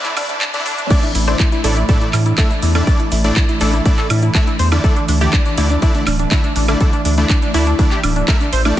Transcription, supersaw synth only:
0.00 0.12 D3 loud
0.00 0.12 A3 medium
0.00 0.12 D4 medium
0.00 0.12 E4 medium
0.00 0.12 D5 loud
0.17 0.29 D3 loud
0.17 0.29 A3 medium
0.17 0.29 D4 medium
0.17 0.29 E4 medium
0.17 0.29 D5 loud
0.54 0.73 D3 medium
0.54 0.73 A3 medium
0.54 0.73 D4 medium
0.54 0.73 E4 medium
0.54 0.73 D5 medium
0.91 1.03 A2 medium
0.91 1.03 A3 medium
0.91 1.03 D4 medium
0.91 1.03 E4 medium
0.91 1.03 D5 medium
1.28 1.47 A2 medium
1.28 1.47 A3 medium
1.28 1.47 D4 medium
1.28 1.47 E4 medium
1.28 1.47 D5 medium
1.64 1.77 A2 medium
1.64 1.77 A3 medium
1.64 1.77 D4 medium
1.64 1.77 E4 medium
1.64 1.77 D5 loud
1.89 2.08 A2 medium
1.89 2.08 A3 medium
1.89 2.08 D4 medium
1.89 2.08 E4 medium
1.89 2.08 D5 loud
2.38 2.50 A2 medium
2.38 2.50 A3 medium
2.38 2.50 D4 medium
2.38 2.50 E4 medium
2.38 2.50 E5 medium
2.75 2.85 A2 medium
2.75 2.85 A3 medium
2.75 2.85 D4 medium
2.75 2.85 E4 medium
2.75 2.85 D5 medium
2.87 3.00 A2 medium
2.87 3.00 A3 medium
2.87 3.00 D4 medium
2.87 3.00 E4 medium
2.87 3.00 D5 medium
3.24 3.44 A2 medium
3.24 3.44 A3 medium
3.24 3.44 D4 medium
3.24 3.44 E4 medium
3.24 3.44 D5 medium
3.61 3.73 A2 loud
3.61 3.73 A3 medium
3.61 3.73 D4 medium
3.61 3.73 E4 medium
3.61 3.73 D5 loud
3.86 4.05 A2 loud
3.86 4.05 A3 medium
3.86 4.05 D4 medium
3.86 4.05 E4 medium
3.86 4.05 D5 loud
4.35 4.47 A2 medium
4.35 4.47 A3 medium
4.35 4.47 D4 medium
4.35 4.47 E4 medium
4.35 4.47 E5 medium
4.72 4.82 D3 medium
4.72 4.82 A3 medium
4.72 4.82 D4 medium
4.72 4.82 E4 medium
4.72 4.82 D5 medium
4.84 4.96 D3 medium
4.84 4.96 A3 medium
4.84 4.96 D4 medium
4.84 4.96 E4 medium
4.84 4.96 D5 medium
5.21 5.40 D3 medium
5.21 5.40 A3 medium
5.21 5.40 D4 medium
5.21 5.40 E4 medium
5.21 5.40 D5 medium
5.58 5.70 D3 loud
5.58 5.70 A3 medium
5.58 5.70 D4 medium
5.58 5.70 E4 medium
5.58 5.70 D5 loud
5.82 6.02 D3 loud
5.82 6.02 A3 medium
5.82 6.02 D4 medium
5.82 6.02 E4 medium
5.82 6.02 D5 loud
6.31 6.44 D3 medium
6.31 6.44 A3 medium
6.31 6.44 D4 medium
6.31 6.44 E4 medium
6.31 6.44 E5 medium
6.69 6.79 D3 medium
6.69 6.79 A3 medium
6.69 6.79 D4 medium
6.69 6.79 E4 medium
6.69 6.79 D5 medium
6.81 6.93 D3 medium
6.81 6.93 A3 medium
6.81 6.93 D4 medium
6.81 6.93 E4 medium
6.81 6.93 D5 medium
7.18 7.37 D3 medium
7.18 7.37 A3 medium
7.18 7.37 D4 medium
7.18 7.37 E4 medium
7.18 7.37 D5 medium
7.54 7.67 D3 loud
7.54 7.67 A3 medium
7.54 7.67 D4 medium
7.54 7.67 E4 medium
7.54 7.67 D5 loud
7.79 7.99 D3 loud
7.79 7.99 A3 medium
7.79 7.99 D4 medium
7.79 7.99 E4 medium
7.79 7.99 D5 loud
8.28 8.41 D3 medium
8.28 8.41 A3 medium
8.28 8.41 D4 medium
8.28 8.41 E4 medium
8.28 8.41 E5 medium
8.65 8.76 A3 medium
8.65 8.76 D4 medium
8.65 8.76 E4 medium
8.65 8.76 D5 medium

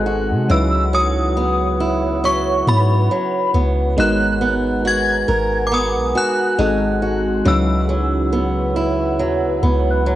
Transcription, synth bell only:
0.00 0.55 F#6 loud
0.51 0.95 E6 loud
0.95 2.28 D#6 medium
2.25 2.69 C#6 medium
2.69 3.51 B5 medium
4.00 4.88 F#6 loud
4.87 5.69 G#6 loud
5.67 5.72 D6 medium
5.74 6.18 D#6 medium
6.18 7.51 F#6 loud
7.48 10.15 E6 medium

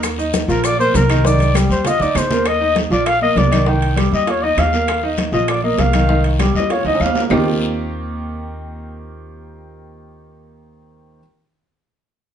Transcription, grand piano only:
0.00 0.13 A#3 medium
0.00 0.13 A#4 medium
0.18 0.43 D#4 medium
0.18 0.43 D#5 medium
0.48 0.73 F3 medium
0.48 0.74 F4 medium
0.78 1.03 A#3 medium
0.78 1.04 A#4 medium
1.10 1.22 D#3 medium
1.10 1.22 D#4 medium
1.24 1.49 D#3 medium
1.24 1.49 D#4 medium
1.55 1.80 G3 medium
1.55 1.80 G4 medium
1.86 1.98 F4 medium
1.86 1.98 F5 medium
2.01 2.25 D#4 medium
2.01 2.25 D#5 medium
2.31 2.56 A#3 medium
2.31 2.56 A#4 medium
2.61 2.86 D#4 medium
2.61 2.86 D#5 medium
2.91 3.16 F3 medium
2.91 3.16 F4 medium
3.21 3.46 A#3 medium
3.21 3.46 A#4 medium
3.51 3.64 D#3 medium
3.51 3.64 D#4 medium
3.66 3.91 D#3 medium
3.66 3.92 D#4 medium
3.96 4.21 G3 medium
3.96 4.22 G4 medium
4.27 4.40 F4 medium
4.27 4.40 F5 medium
4.43 4.68 D#4 medium
4.43 4.68 D#5 medium
4.73 4.98 A#3 medium
4.73 4.98 A#4 medium
5.03 5.28 D#4 medium
5.03 5.28 D#5 medium
5.33 5.58 F3 medium
5.33 5.58 F4 medium
5.64 5.89 A#3 medium
5.64 5.89 A#4 medium
5.94 6.06 D#3 medium
5.94 6.07 D#4 medium
6.10 6.34 D#3 medium
6.10 6.34 D#4 medium
6.40 6.65 G3 medium
6.40 6.65 G4 medium
6.70 6.82 F4 medium
6.70 6.83 F5 medium
6.86 7.10 D#4 medium
6.86 7.11 D#5 medium
7.16 7.28 A#3 medium
7.16 7.28 A#4 medium
7.30 11.19 D#3 medium
7.30 11.19 A#3 medium
7.30 11.19 C4 medium
7.30 11.19 D#4 medium
7.30 11.20 F4 medium
7.30 11.20 G4 medium

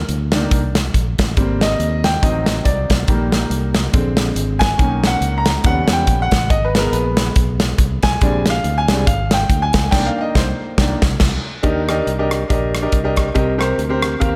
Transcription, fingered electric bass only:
0.09 0.45 D2 medium
0.52 0.88 C2 medium
0.94 1.15 A#1 medium
1.19 1.34 A1 medium
1.37 1.74 G#1 medium
1.79 2.16 D#2 medium
2.23 2.59 A1 loud
2.66 2.86 C2 medium
2.90 3.06 B1 medium
3.08 3.45 A#1 medium
3.50 3.87 C2 medium
3.94 4.30 A#1 medium
4.35 4.72 G#1 medium
4.79 5.16 B1 loud
5.21 5.58 C#2 medium
5.64 5.85 D#2 loud
5.89 6.05 E2 medium
6.07 6.28 A#1 loud
6.51 6.87 G#1 medium
6.92 7.29 A#1 medium
7.36 7.72 B1 medium
7.78 7.99 C2 medium
8.03 8.19 B1 medium
8.22 8.58 A#1 loud
8.64 8.85 D2 medium
8.88 9.04 C2 loud
9.07 9.43 G#1 loud
9.49 9.70 D2 medium
9.74 9.89 C#2 loud
9.92 10.09 C2 loud
10.35 10.52 C2 medium
10.78 10.95 C2 loud
11.02 11.14 C2 loud
11.21 11.37 C2 loud
11.64 12.00 D#2 medium
12.07 12.43 C2 medium
12.50 12.86 A#1 medium
12.93 13.29 C2 medium
13.36 13.72 C2 medium
13.78 14.15 D2 medium
14.21 14.36 D#2 medium

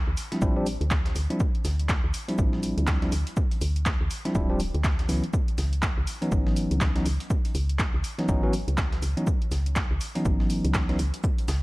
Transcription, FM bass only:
0.07 0.16 D2 medium
0.42 0.78 A1 medium
0.81 1.13 D2 medium
1.16 1.28 D2 medium
1.65 2.00 D2 loud
2.04 2.12 D2 medium
2.39 2.74 A1 medium
2.78 3.10 D2 medium
3.12 3.25 D2 medium
3.61 3.97 D2 loud
4.01 4.09 D2 medium
4.35 4.71 D1 loud
4.74 5.07 D2 loud
5.09 5.21 C#2 medium
5.58 5.94 C#2 medium
5.97 6.06 C#2 medium
6.32 6.68 G#1 medium
6.71 7.03 C#2 medium
7.06 7.18 C#2 medium
7.55 7.91 C#2 loud
7.94 8.03 C#2 medium
8.29 8.64 G#1 medium
8.68 9.00 C#2 medium
9.02 9.15 C#2 medium
9.51 9.87 C#2 medium
9.91 9.99 C#2 medium
10.25 10.61 G#1 medium
10.64 10.97 C#2 medium
10.99 11.12 C#2 medium
11.48 11.63 C#2 loud

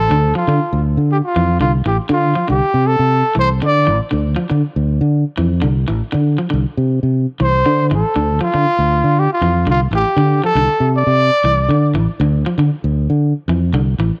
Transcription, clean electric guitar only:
0.11 0.26 D3 medium
0.35 0.43 F3 medium
0.49 0.63 D3 medium
1.36 1.51 E3 medium
1.61 1.75 D3 medium
1.86 2.01 E3 medium
2.09 2.24 D3 loud
2.35 2.43 F3 medium
2.48 2.63 D3 medium
3.35 3.50 E3 medium
3.62 3.77 D3 medium
3.87 4.02 E3 medium
4.11 4.26 D3 medium
4.36 4.44 F3 medium
4.50 4.65 D3 medium
5.38 5.52 E3 medium
5.62 5.77 D3 loud
5.88 6.03 E3 medium
6.12 6.27 D3 medium
6.38 6.46 F3 medium
6.50 6.65 D3 medium
7.40 7.55 E3 medium
7.66 7.80 D3 medium
7.91 8.06 E3 medium
8.16 8.30 D3 medium
8.41 8.48 F3 medium
8.54 8.69 D3 medium
9.42 9.57 E3 medium
9.67 9.82 D3 medium
9.93 10.08 E3 medium
10.18 10.33 D3 medium
10.44 10.51 F3 medium
10.57 10.71 D3 medium
11.45 11.60 E3 medium
11.71 11.85 D3 medium
11.95 12.10 E3 medium
12.21 12.36 D3 medium
12.46 12.54 F3 medium
12.59 12.74 D3 medium
13.49 13.64 E3 medium
13.74 13.88 D3 medium
14.00 14.14 E3 medium

